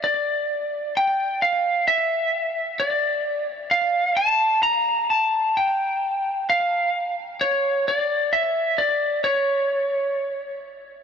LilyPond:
\new Staff \with { instrumentName = "Lead electric guitar" } { \time 4/4 \key d \minor \tempo 4 = 65 d''4 g''8 f''8 e''4 d''8. r16 | f''8 a''8 bes''8 a''8 g''4 f''8. r16 | cis''8 d''8 e''8 d''8 cis''4. r8 | }